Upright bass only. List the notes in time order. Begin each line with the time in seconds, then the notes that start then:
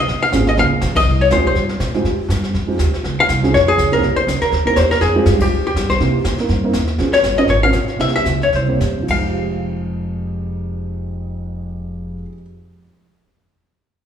0.08 A#1
0.33 G#1
0.57 C#2
0.81 A#1
1.05 C2
1.30 D#2
1.55 G2
1.79 A#2
2.04 G#2
2.17 muted upright bass stroke
2.28 G2
2.54 F2
2.79 D#2
2.92 muted upright bass stroke
3.03 C#2
3.28 C2
3.54 F2
3.78 C#2
4.02 C2
4.17 muted upright bass stroke
4.27 C#2
4.41 muted upright bass stroke
4.52 D#2
4.65 muted upright bass stroke
4.76 E2
5.01 F2
5.26 G2
5.50 D#2
5.75 G2
6.00 C3
6.24 A#2
6.49 G2
6.73 D#2
6.98 A#1
7.23 G1
7.47 G#1
7.73 A#1
7.99 C2
8.25 C#2
8.52 C2
8.80 G2
9.08 F1